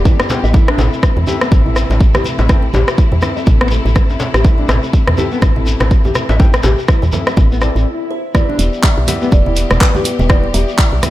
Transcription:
Already playing: string section E3 G3 B3 G4, tine electric piano B3 E4 G4 D5
0.05 nylon-string guitar E4, kick, low conga, shekere
0.20 cross-stick, djembe tone, shekere
0.29 tine electric piano B3 E4 G4 G5, muted conga, djembe slap, high conga, shekere
0.44 fm bass A1, nylon-string guitar E5, shekere
0.54 string section C3 A3 E4, tine electric piano C4 E4 A4 E5, nylon-string guitar E4, kick, djembe tone, low conga, shekere
0.68 nylon-string guitar D4, cross-stick, muted conga
0.78 fm bass A1, djembe slap, high conga, shekere
0.93 shekere
1.03 kick, cross-stick, shekere
1.17 fm bass E2, muted conga, high conga
1.27 tine electric piano C4 E4 A4 E5, nylon-string guitar G4, djembe tone, low conga, shekere
1.41 nylon-string guitar B3, cross-stick, shekere
1.51 fm bass A1, kick, muted conga, low conga, shekere
1.66 nylon-string guitar E4, high conga
1.76 cross-stick, djembe tone, shekere
1.90 fm bass A1, muted conga, djembe slap, high conga, shekere
2.00 kick, shekere
2.14 nylon-string guitar G4, cross-stick, low conga, shekere
2.24 muted conga, high conga, shekere
2.39 fm bass A1, nylon-string guitar E5, djembe slap, shekere
2.49 tine electric piano C4 E4 A4 G5, nylon-string guitar E4, kick, cross-stick, djembe tone, low conga, shekere
2.62 muted conga
2.73 fm bass A1, nylon-string guitar G4, djembe slap, high conga, shekere
2.88 cross-stick, shekere
2.98 nylon-string guitar E4, kick, shekere
3.12 fm bass E2, muted conga, high conga
3.21 tine electric piano C4 E4 A4 E5, cross-stick, djembe tone, low conga, shekere
3.37 nylon-string guitar E5, shekere
3.46 fm bass A1, kick, muted conga, high conga, shekere
3.61 nylon-string guitar B3, cross-stick
3.71 nylon-string guitar A4, high conga, shekere
3.85 fm bass A1, nylon-string guitar A4, muted conga, shekere
3.95 kick, cross-stick, low conga, shekere
4.10 djembe tone, shekere
4.20 djembe slap, muted conga, high conga, shekere
4.34 fm bass A1, nylon-string guitar G4, cross-stick, shekere
4.44 tine electric piano C4 E4 A4 E5, nylon-string guitar E4, kick, djembe tone, low conga, shekere
4.58 nylon-string guitar D4, muted conga
4.69 fm bass A1, cross-stick, djembe slap, high conga, shekere
4.83 shekere
4.93 kick, shekere
5.07 fm bass E2, cross-stick, muted conga, high conga
5.17 tine electric piano C4 E4 A4 E5, nylon-string guitar G4, djembe tone, low conga, shekere
5.32 nylon-string guitar B3, shekere
5.42 fm bass A1, kick, cross-stick, muted conga, low conga, shekere
5.56 nylon-string guitar E4, high conga
5.66 djembe tone, shekere
5.80 fm bass A1, cross-stick, djembe slap, muted conga, high conga, shekere
5.91 kick, shekere
6.05 nylon-string guitar G4, low conga, shekere
6.15 cross-stick, muted conga, high conga, shekere
6.29 fm bass A1, nylon-string guitar E5, djembe slap, shekere
6.39 tine electric piano C4 E4 A4 G5, nylon-string guitar E4, kick, djembe tone, low conga, shekere
6.53 cross-stick, muted conga, shekere
6.63 fm bass A1, nylon-string guitar G4, djembe slap, high conga, shekere
6.78 shekere
6.88 nylon-string guitar E4, kick, cross-stick, shekere
7.02 fm bass E2, muted conga, high conga, shekere
7.12 tine electric piano C4 E4 A4 E5, djembe tone, low conga, shekere
7.27 nylon-string guitar E5, cross-stick, shekere
7.37 fm bass A1, kick, swell, muted conga, high conga, shekere
7.51 nylon-string guitar B3, shekere
7.61 tine electric piano C4 E4 A4 D5, nylon-string guitar A4, cross-stick, high conga, shekere
7.76 fm bass A1, nylon-string guitar A4, muted conga, shekere
8.11 kalimba C5
8.34 string section E3 G3 B3 G4, tine electric piano B3 E4 G4 E5, nylon-string guitar E4, kalimba D5, kick, cross-stick, low conga, shekere
8.49 nylon-string guitar D4, muted conga
8.59 fm bass E1, open hi-hat, shekere
8.73 shekere
8.83 kalimba E5, kick, clap, shekere
8.97 fm bass B1, muted conga
9.07 tine electric piano B3 E4 G4 E5, nylon-string guitar G4, open hi-hat, high conga, low conga, shekere
9.22 nylon-string guitar B3, shekere
9.32 fm bass E1, kalimba D5, kick, muted conga, shekere
9.46 nylon-string guitar E4, high conga
9.56 open hi-hat, shekere
9.70 fm bass E1, cross-stick, muted conga, high conga, shekere
9.81 kalimba B4, kick, clap, shekere
9.95 nylon-string guitar G4, low conga, shekere
10.04 open hi-hat, muted conga, shekere
10.19 fm bass E1, nylon-string guitar E5, high conga, shekere
10.29 tine electric piano B3 E4 G4 G5, nylon-string guitar E4, kalimba D5, kick, cross-stick, low conga, shekere
10.44 muted conga
10.54 fm bass E1, nylon-string guitar G4, kalimba E5, open hi-hat, shekere
10.68 shekere
10.78 nylon-string guitar E4, kick, clap, shekere
10.92 fm bass B1, muted conga
11.03 tine electric piano B3 E4 G4 E5, cross-stick, open hi-hat, high conga, low conga, shekere

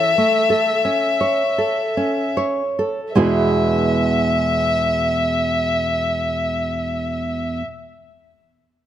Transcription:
Already playing: nylon-string guitar E3 A4, violin E5
0.18 nylon-string guitar A3
0.50 nylon-string guitar A4
0.85 nylon-string guitar C#4
1.21 nylon-string guitar C#5
1.58 nylon-string guitar A4
1.97 nylon-string guitar C#4
2.37 nylon-string guitar C#5
2.79 nylon-string guitar A4
3.14 nylon-string guitar E2 B2 G#3 B3 E4 G#4, violin E5

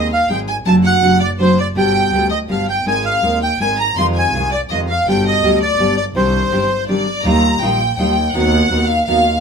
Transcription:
Already playing: double bass D#2, nylon-string guitar G#4
0.12 violin section F5, bandoneon F5
0.28 double bass G#1, nylon-string guitar D#3 G#3 C4 D#4 G#4, violin section G5
0.33 bandoneon G5
0.48 violin section G#5, bandoneon G#5
0.64 double bass F#1, nylon-string guitar C3 F#3 A3 D4 F#4, violin section A5
0.68 bandoneon A5
0.84 violin section F#5, bandoneon F#5
1.01 double bass F#1, nylon-string guitar C3 F#3 A3 D4 F#4
1.19 violin section D5, bandoneon D5
1.37 double bass F#1, nylon-string guitar C3 F#3 A3 D4 F#4, violin section C5
1.42 bandoneon C5
1.58 violin section D5, bandoneon D5
1.74 double bass G1, nylon-string guitar B2 D3 G3 B3 G4, violin section G5, bandoneon G5
2.11 double bass D2, nylon-string guitar B2 D3 G3 B3 G4
2.31 violin section D#5, bandoneon D#5
2.48 double bass G1, nylon-string guitar B2 D3 G3 B3 G4, violin section F5, bandoneon F5
2.68 violin section G5, bandoneon G5
2.85 double bass G#1, nylon-string guitar G#3 C4 D#4 A#4, violin section G#5, bandoneon G#5
3.05 violin section F5, bandoneon F5
3.22 double bass D#2, nylon-string guitar G#3 C4 D#4 A#4
3.42 violin section G5, bandoneon G5
3.59 double bass G#1, nylon-string guitar G#3 C4 D#4 A#4, violin section G#5, bandoneon G#5
3.78 violin section A#5, bandoneon A#5
3.94 double bass F2, nylon-string guitar C3 D#3 G#3 C4, violin section C6
3.98 nylon-string guitar F4, bandoneon C6
4.14 violin section G#5
4.18 bandoneon G#5
4.33 double bass C2, nylon-string guitar C3 D#3 G#3 C4 F4
4.51 violin section D5, bandoneon D5
4.69 double bass F2, nylon-string guitar C3 D#3 G#3 C4 F4, violin section D#5
4.74 bandoneon D#5
4.88 violin section F5, bandoneon F5
5.06 double bass G1, nylon-string guitar B2 D3 G3 B3 G4, violin section G5, bandoneon G5
5.26 violin section D#5, bandoneon D#5
5.42 double bass D2, nylon-string guitar B2 D3 G3 B3 G4
5.60 violin section D5, bandoneon D5
5.78 double bass G1, nylon-string guitar B2 D3 G3 B3 G4
5.97 violin section D5, bandoneon D5
6.14 double bass C2, nylon-string guitar C3 D#3 G3 D4 G4, violin section C5, bandoneon C5
6.51 double bass G1, nylon-string guitar C3 D#3 G3 D4 G4
6.89 nylon-string guitar C3 D#3 G3 D4 G4, violin section D5
7.24 double bass D#2, nylon-string guitar D#3 G3 D#4 F4, violin section A#5
7.61 double bass A#1, nylon-string guitar D#3 G3 D#4 F4, violin section G5
7.97 double bass D#2, nylon-string guitar D#3 G3 D#4 F4, violin section G5
8.32 double bass D#2, nylon-string guitar D#3 B3 D#4 F#4, violin section F#5
8.70 double bass D#2, nylon-string guitar D#3 B3 D#4 F#4
8.86 violin section F5
9.06 double bass D#2, nylon-string guitar D#3 B3 D#4 F#4, violin section F5

